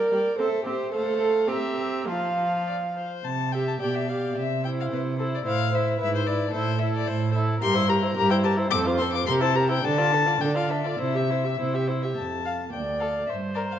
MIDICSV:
0, 0, Header, 1, 5, 480
1, 0, Start_track
1, 0, Tempo, 549954
1, 814, Time_signature, 2, 2, 24, 8
1, 1302, Tempo, 575264
1, 3702, Tempo, 539084
1, 6102, Tempo, 550459
1, 8022, Tempo, 566038
1, 8982, Tempo, 591133
1, 10422, Tempo, 556070
1, 11820, End_track
2, 0, Start_track
2, 0, Title_t, "Violin"
2, 0, Program_c, 0, 40
2, 0, Note_on_c, 0, 79, 51
2, 96, Note_off_c, 0, 79, 0
2, 110, Note_on_c, 0, 79, 42
2, 338, Note_off_c, 0, 79, 0
2, 355, Note_on_c, 0, 76, 52
2, 579, Note_off_c, 0, 76, 0
2, 590, Note_on_c, 0, 76, 48
2, 817, Note_off_c, 0, 76, 0
2, 828, Note_on_c, 0, 77, 60
2, 1319, Note_on_c, 0, 82, 58
2, 1331, Note_off_c, 0, 77, 0
2, 1805, Note_on_c, 0, 81, 52
2, 1818, Note_off_c, 0, 82, 0
2, 2279, Note_off_c, 0, 81, 0
2, 2284, Note_on_c, 0, 74, 68
2, 2351, Note_off_c, 0, 74, 0
2, 2522, Note_on_c, 0, 72, 65
2, 2767, Note_on_c, 0, 81, 85
2, 2779, Note_off_c, 0, 72, 0
2, 2996, Note_on_c, 0, 79, 64
2, 3008, Note_off_c, 0, 81, 0
2, 3117, Note_off_c, 0, 79, 0
2, 3126, Note_on_c, 0, 81, 70
2, 3173, Note_off_c, 0, 81, 0
2, 3232, Note_on_c, 0, 79, 75
2, 3356, Note_on_c, 0, 76, 67
2, 3368, Note_off_c, 0, 79, 0
2, 3472, Note_on_c, 0, 77, 59
2, 3485, Note_off_c, 0, 76, 0
2, 3702, Note_off_c, 0, 77, 0
2, 3710, Note_on_c, 0, 76, 77
2, 3944, Note_off_c, 0, 76, 0
2, 3953, Note_on_c, 0, 79, 66
2, 4000, Note_off_c, 0, 79, 0
2, 4090, Note_on_c, 0, 77, 61
2, 4134, Note_off_c, 0, 77, 0
2, 4201, Note_on_c, 0, 71, 71
2, 4272, Note_off_c, 0, 71, 0
2, 4437, Note_on_c, 0, 69, 58
2, 4484, Note_off_c, 0, 69, 0
2, 4570, Note_on_c, 0, 74, 73
2, 4614, Note_off_c, 0, 74, 0
2, 4683, Note_on_c, 0, 77, 92
2, 4927, Note_on_c, 0, 76, 73
2, 4940, Note_off_c, 0, 77, 0
2, 5159, Note_off_c, 0, 76, 0
2, 5165, Note_on_c, 0, 76, 92
2, 5275, Note_off_c, 0, 76, 0
2, 5291, Note_on_c, 0, 72, 75
2, 5396, Note_on_c, 0, 74, 75
2, 5410, Note_off_c, 0, 72, 0
2, 5623, Note_off_c, 0, 74, 0
2, 5629, Note_on_c, 0, 72, 85
2, 5862, Note_on_c, 0, 76, 80
2, 5875, Note_off_c, 0, 72, 0
2, 5982, Note_off_c, 0, 76, 0
2, 6010, Note_on_c, 0, 74, 77
2, 6115, Note_on_c, 0, 72, 78
2, 6128, Note_off_c, 0, 74, 0
2, 6346, Note_off_c, 0, 72, 0
2, 6589, Note_on_c, 0, 84, 110
2, 6830, Note_on_c, 0, 82, 92
2, 6843, Note_off_c, 0, 84, 0
2, 7056, Note_off_c, 0, 82, 0
2, 7061, Note_on_c, 0, 82, 112
2, 7177, Note_off_c, 0, 82, 0
2, 7186, Note_on_c, 0, 79, 89
2, 7233, Note_off_c, 0, 79, 0
2, 7300, Note_on_c, 0, 81, 106
2, 7370, Note_off_c, 0, 81, 0
2, 7535, Note_on_c, 0, 86, 127
2, 7605, Note_off_c, 0, 86, 0
2, 7772, Note_on_c, 0, 84, 84
2, 7894, Note_off_c, 0, 84, 0
2, 7902, Note_on_c, 0, 86, 102
2, 8016, Note_off_c, 0, 86, 0
2, 8021, Note_on_c, 0, 84, 108
2, 8069, Note_off_c, 0, 84, 0
2, 8151, Note_on_c, 0, 81, 99
2, 8271, Note_on_c, 0, 82, 90
2, 8284, Note_off_c, 0, 81, 0
2, 8385, Note_off_c, 0, 82, 0
2, 8391, Note_on_c, 0, 79, 100
2, 8514, Note_on_c, 0, 81, 114
2, 8527, Note_off_c, 0, 79, 0
2, 8993, Note_on_c, 0, 79, 97
2, 9005, Note_off_c, 0, 81, 0
2, 9106, Note_off_c, 0, 79, 0
2, 9121, Note_on_c, 0, 77, 73
2, 9227, Note_on_c, 0, 76, 73
2, 9239, Note_off_c, 0, 77, 0
2, 9347, Note_on_c, 0, 74, 72
2, 9360, Note_off_c, 0, 76, 0
2, 9466, Note_on_c, 0, 76, 76
2, 9478, Note_off_c, 0, 74, 0
2, 10190, Note_off_c, 0, 76, 0
2, 10411, Note_on_c, 0, 81, 65
2, 10868, Note_off_c, 0, 81, 0
2, 10901, Note_on_c, 0, 79, 56
2, 11142, Note_on_c, 0, 77, 55
2, 11155, Note_off_c, 0, 79, 0
2, 11361, Note_off_c, 0, 77, 0
2, 11366, Note_on_c, 0, 76, 72
2, 11435, Note_off_c, 0, 76, 0
2, 11607, Note_on_c, 0, 74, 60
2, 11658, Note_off_c, 0, 74, 0
2, 11754, Note_on_c, 0, 77, 59
2, 11799, Note_off_c, 0, 77, 0
2, 11820, End_track
3, 0, Start_track
3, 0, Title_t, "Violin"
3, 0, Program_c, 1, 40
3, 0, Note_on_c, 1, 74, 49
3, 95, Note_off_c, 1, 74, 0
3, 111, Note_on_c, 1, 74, 42
3, 330, Note_off_c, 1, 74, 0
3, 336, Note_on_c, 1, 72, 46
3, 569, Note_off_c, 1, 72, 0
3, 585, Note_on_c, 1, 72, 50
3, 814, Note_off_c, 1, 72, 0
3, 823, Note_on_c, 1, 72, 55
3, 1273, Note_off_c, 1, 72, 0
3, 1310, Note_on_c, 1, 76, 62
3, 1784, Note_off_c, 1, 76, 0
3, 1799, Note_on_c, 1, 77, 55
3, 2581, Note_off_c, 1, 77, 0
3, 3014, Note_on_c, 1, 76, 43
3, 3241, Note_off_c, 1, 76, 0
3, 3245, Note_on_c, 1, 74, 45
3, 3472, Note_off_c, 1, 74, 0
3, 3479, Note_on_c, 1, 74, 40
3, 3701, Note_off_c, 1, 74, 0
3, 3950, Note_on_c, 1, 72, 43
3, 4424, Note_off_c, 1, 72, 0
3, 4434, Note_on_c, 1, 72, 45
3, 4653, Note_off_c, 1, 72, 0
3, 4658, Note_on_c, 1, 72, 48
3, 4897, Note_off_c, 1, 72, 0
3, 4902, Note_on_c, 1, 72, 51
3, 5137, Note_off_c, 1, 72, 0
3, 5142, Note_on_c, 1, 71, 51
3, 5369, Note_off_c, 1, 71, 0
3, 5375, Note_on_c, 1, 71, 50
3, 5601, Note_off_c, 1, 71, 0
3, 5606, Note_on_c, 1, 69, 56
3, 5829, Note_off_c, 1, 69, 0
3, 5835, Note_on_c, 1, 69, 51
3, 6316, Note_off_c, 1, 69, 0
3, 6332, Note_on_c, 1, 69, 61
3, 6567, Note_off_c, 1, 69, 0
3, 6572, Note_on_c, 1, 70, 65
3, 6697, Note_on_c, 1, 72, 62
3, 6710, Note_off_c, 1, 70, 0
3, 6815, Note_on_c, 1, 70, 61
3, 6828, Note_off_c, 1, 72, 0
3, 6946, Note_on_c, 1, 72, 60
3, 6959, Note_off_c, 1, 70, 0
3, 7055, Note_off_c, 1, 72, 0
3, 7060, Note_on_c, 1, 70, 67
3, 7187, Note_on_c, 1, 72, 58
3, 7200, Note_off_c, 1, 70, 0
3, 7312, Note_on_c, 1, 70, 70
3, 7325, Note_off_c, 1, 72, 0
3, 7429, Note_on_c, 1, 72, 65
3, 7442, Note_off_c, 1, 70, 0
3, 7544, Note_off_c, 1, 72, 0
3, 7563, Note_on_c, 1, 69, 76
3, 7678, Note_on_c, 1, 72, 68
3, 7691, Note_off_c, 1, 69, 0
3, 7803, Note_on_c, 1, 69, 63
3, 7816, Note_off_c, 1, 72, 0
3, 7928, Note_on_c, 1, 72, 54
3, 7941, Note_off_c, 1, 69, 0
3, 8031, Note_off_c, 1, 72, 0
3, 8036, Note_on_c, 1, 70, 62
3, 8151, Note_on_c, 1, 72, 59
3, 8164, Note_off_c, 1, 70, 0
3, 8271, Note_on_c, 1, 70, 64
3, 8284, Note_off_c, 1, 72, 0
3, 8392, Note_on_c, 1, 72, 62
3, 8405, Note_off_c, 1, 70, 0
3, 8493, Note_off_c, 1, 72, 0
3, 8498, Note_on_c, 1, 69, 71
3, 8625, Note_on_c, 1, 74, 64
3, 8638, Note_off_c, 1, 69, 0
3, 8757, Note_on_c, 1, 69, 55
3, 8770, Note_off_c, 1, 74, 0
3, 8864, Note_on_c, 1, 74, 53
3, 8876, Note_off_c, 1, 69, 0
3, 8978, Note_off_c, 1, 74, 0
3, 8983, Note_on_c, 1, 69, 54
3, 9105, Note_on_c, 1, 74, 48
3, 9117, Note_off_c, 1, 69, 0
3, 9233, Note_on_c, 1, 69, 52
3, 9245, Note_off_c, 1, 74, 0
3, 9357, Note_on_c, 1, 74, 49
3, 9369, Note_off_c, 1, 69, 0
3, 9471, Note_off_c, 1, 74, 0
3, 9475, Note_on_c, 1, 72, 52
3, 9602, Note_on_c, 1, 76, 46
3, 9615, Note_off_c, 1, 72, 0
3, 9723, Note_on_c, 1, 72, 41
3, 9735, Note_off_c, 1, 76, 0
3, 9836, Note_on_c, 1, 76, 44
3, 9848, Note_off_c, 1, 72, 0
3, 9953, Note_off_c, 1, 76, 0
3, 9959, Note_on_c, 1, 72, 48
3, 10078, Note_on_c, 1, 76, 40
3, 10090, Note_off_c, 1, 72, 0
3, 10182, Note_on_c, 1, 72, 47
3, 10194, Note_off_c, 1, 76, 0
3, 10305, Note_on_c, 1, 76, 43
3, 10317, Note_off_c, 1, 72, 0
3, 10422, Note_off_c, 1, 76, 0
3, 10664, Note_on_c, 1, 77, 39
3, 10778, Note_off_c, 1, 77, 0
3, 11143, Note_on_c, 1, 69, 42
3, 11257, Note_off_c, 1, 69, 0
3, 11618, Note_on_c, 1, 70, 48
3, 11731, Note_off_c, 1, 70, 0
3, 11820, End_track
4, 0, Start_track
4, 0, Title_t, "Viola"
4, 0, Program_c, 2, 41
4, 100, Note_on_c, 2, 55, 47
4, 170, Note_off_c, 2, 55, 0
4, 338, Note_on_c, 2, 60, 54
4, 408, Note_off_c, 2, 60, 0
4, 572, Note_on_c, 2, 60, 53
4, 642, Note_off_c, 2, 60, 0
4, 810, Note_on_c, 2, 57, 63
4, 1292, Note_on_c, 2, 60, 59
4, 1305, Note_off_c, 2, 57, 0
4, 1790, Note_on_c, 2, 53, 53
4, 1803, Note_off_c, 2, 60, 0
4, 2592, Note_off_c, 2, 53, 0
4, 2999, Note_on_c, 2, 67, 43
4, 3227, Note_off_c, 2, 67, 0
4, 3232, Note_on_c, 2, 67, 44
4, 3465, Note_off_c, 2, 67, 0
4, 3472, Note_on_c, 2, 67, 45
4, 3697, Note_off_c, 2, 67, 0
4, 3938, Note_on_c, 2, 64, 43
4, 4418, Note_off_c, 2, 64, 0
4, 4430, Note_on_c, 2, 64, 51
4, 4656, Note_off_c, 2, 64, 0
4, 4661, Note_on_c, 2, 64, 50
4, 4901, Note_off_c, 2, 64, 0
4, 4915, Note_on_c, 2, 64, 47
4, 5148, Note_off_c, 2, 64, 0
4, 5155, Note_on_c, 2, 64, 55
4, 5386, Note_off_c, 2, 64, 0
4, 5395, Note_on_c, 2, 64, 49
4, 5623, Note_off_c, 2, 64, 0
4, 5632, Note_on_c, 2, 64, 55
4, 5861, Note_off_c, 2, 64, 0
4, 5867, Note_on_c, 2, 64, 57
4, 6332, Note_off_c, 2, 64, 0
4, 6346, Note_on_c, 2, 64, 63
4, 6578, Note_off_c, 2, 64, 0
4, 6591, Note_on_c, 2, 67, 66
4, 6705, Note_on_c, 2, 64, 62
4, 6718, Note_off_c, 2, 67, 0
4, 6821, Note_on_c, 2, 67, 59
4, 6834, Note_off_c, 2, 64, 0
4, 6940, Note_on_c, 2, 64, 56
4, 6953, Note_off_c, 2, 67, 0
4, 7059, Note_off_c, 2, 64, 0
4, 7063, Note_on_c, 2, 67, 73
4, 7183, Note_on_c, 2, 64, 67
4, 7196, Note_off_c, 2, 67, 0
4, 7298, Note_on_c, 2, 67, 66
4, 7311, Note_off_c, 2, 64, 0
4, 7416, Note_on_c, 2, 64, 67
4, 7429, Note_off_c, 2, 67, 0
4, 7527, Note_off_c, 2, 64, 0
4, 7532, Note_on_c, 2, 60, 73
4, 7661, Note_on_c, 2, 65, 71
4, 7674, Note_off_c, 2, 60, 0
4, 7777, Note_on_c, 2, 60, 64
4, 7790, Note_off_c, 2, 65, 0
4, 7904, Note_on_c, 2, 65, 57
4, 7917, Note_off_c, 2, 60, 0
4, 8024, Note_off_c, 2, 65, 0
4, 8030, Note_on_c, 2, 67, 74
4, 8142, Note_on_c, 2, 64, 66
4, 8155, Note_off_c, 2, 67, 0
4, 8263, Note_on_c, 2, 67, 62
4, 8276, Note_off_c, 2, 64, 0
4, 8381, Note_on_c, 2, 64, 63
4, 8394, Note_off_c, 2, 67, 0
4, 8500, Note_off_c, 2, 64, 0
4, 8506, Note_on_c, 2, 62, 68
4, 8630, Note_on_c, 2, 65, 62
4, 8642, Note_off_c, 2, 62, 0
4, 8748, Note_on_c, 2, 62, 58
4, 8761, Note_off_c, 2, 65, 0
4, 8870, Note_on_c, 2, 65, 52
4, 8883, Note_off_c, 2, 62, 0
4, 8987, Note_off_c, 2, 65, 0
4, 8992, Note_on_c, 2, 62, 64
4, 9110, Note_on_c, 2, 65, 54
4, 9122, Note_off_c, 2, 62, 0
4, 9224, Note_on_c, 2, 62, 47
4, 9236, Note_off_c, 2, 65, 0
4, 9345, Note_on_c, 2, 65, 44
4, 9357, Note_off_c, 2, 62, 0
4, 9462, Note_off_c, 2, 65, 0
4, 9467, Note_on_c, 2, 64, 54
4, 9591, Note_on_c, 2, 67, 47
4, 9603, Note_off_c, 2, 64, 0
4, 9715, Note_on_c, 2, 64, 42
4, 9728, Note_off_c, 2, 67, 0
4, 9831, Note_on_c, 2, 67, 39
4, 9844, Note_off_c, 2, 64, 0
4, 9950, Note_off_c, 2, 67, 0
4, 9955, Note_on_c, 2, 64, 47
4, 10072, Note_on_c, 2, 67, 46
4, 10084, Note_off_c, 2, 64, 0
4, 10194, Note_on_c, 2, 64, 41
4, 10206, Note_off_c, 2, 67, 0
4, 10317, Note_on_c, 2, 67, 38
4, 10329, Note_off_c, 2, 64, 0
4, 10428, Note_off_c, 2, 67, 0
4, 10909, Note_on_c, 2, 74, 48
4, 11393, Note_on_c, 2, 72, 59
4, 11406, Note_off_c, 2, 74, 0
4, 11820, Note_off_c, 2, 72, 0
4, 11820, End_track
5, 0, Start_track
5, 0, Title_t, "Cello"
5, 0, Program_c, 3, 42
5, 0, Note_on_c, 3, 70, 73
5, 328, Note_off_c, 3, 70, 0
5, 334, Note_on_c, 3, 69, 69
5, 567, Note_off_c, 3, 69, 0
5, 572, Note_on_c, 3, 67, 64
5, 797, Note_off_c, 3, 67, 0
5, 802, Note_on_c, 3, 69, 84
5, 1293, Note_on_c, 3, 67, 71
5, 1306, Note_off_c, 3, 69, 0
5, 1787, Note_on_c, 3, 65, 61
5, 1800, Note_off_c, 3, 67, 0
5, 2520, Note_off_c, 3, 65, 0
5, 2761, Note_on_c, 3, 48, 58
5, 3180, Note_off_c, 3, 48, 0
5, 3234, Note_on_c, 3, 47, 56
5, 3647, Note_off_c, 3, 47, 0
5, 3698, Note_on_c, 3, 48, 62
5, 4128, Note_off_c, 3, 48, 0
5, 4182, Note_on_c, 3, 48, 61
5, 4612, Note_off_c, 3, 48, 0
5, 4666, Note_on_c, 3, 45, 66
5, 5091, Note_off_c, 3, 45, 0
5, 5155, Note_on_c, 3, 44, 64
5, 5571, Note_off_c, 3, 44, 0
5, 5624, Note_on_c, 3, 45, 73
5, 6045, Note_off_c, 3, 45, 0
5, 6111, Note_on_c, 3, 45, 74
5, 6527, Note_off_c, 3, 45, 0
5, 6584, Note_on_c, 3, 43, 85
5, 7003, Note_off_c, 3, 43, 0
5, 7061, Note_on_c, 3, 43, 78
5, 7484, Note_off_c, 3, 43, 0
5, 7538, Note_on_c, 3, 41, 87
5, 7965, Note_off_c, 3, 41, 0
5, 8028, Note_on_c, 3, 48, 76
5, 8446, Note_off_c, 3, 48, 0
5, 8507, Note_on_c, 3, 50, 86
5, 8928, Note_off_c, 3, 50, 0
5, 8988, Note_on_c, 3, 50, 69
5, 9409, Note_off_c, 3, 50, 0
5, 9466, Note_on_c, 3, 48, 68
5, 9894, Note_off_c, 3, 48, 0
5, 9955, Note_on_c, 3, 48, 61
5, 10371, Note_off_c, 3, 48, 0
5, 10431, Note_on_c, 3, 41, 48
5, 10832, Note_off_c, 3, 41, 0
5, 10910, Note_on_c, 3, 38, 47
5, 11310, Note_off_c, 3, 38, 0
5, 11392, Note_on_c, 3, 43, 55
5, 11785, Note_off_c, 3, 43, 0
5, 11820, End_track
0, 0, End_of_file